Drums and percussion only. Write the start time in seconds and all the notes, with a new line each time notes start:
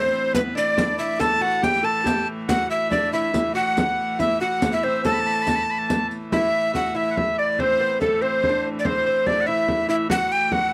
0.13 riq, frame drum
0.35 riq, frame drum
0.57 riq, frame drum
0.78 riq, frame drum
1.21 riq, frame drum
1.42 frame drum
1.63 riq, frame drum
2.06 riq, frame drum
2.28 frame drum
2.49 riq, frame drum
2.71 frame drum
2.92 frame drum
3.34 riq, frame drum
3.56 frame drum
3.77 riq, frame drum
4.20 riq, frame drum
4.62 riq, frame drum
4.84 frame drum
5.05 riq, frame drum
5.47 riq, frame drum
5.90 riq, frame drum
6.11 riq
6.32 frame drum
6.75 frame drum
7.17 frame drum
7.59 frame drum
8.02 frame drum
8.44 frame drum
8.85 frame drum
9.27 frame drum
9.68 frame drum
10.10 frame drum
10.52 frame drum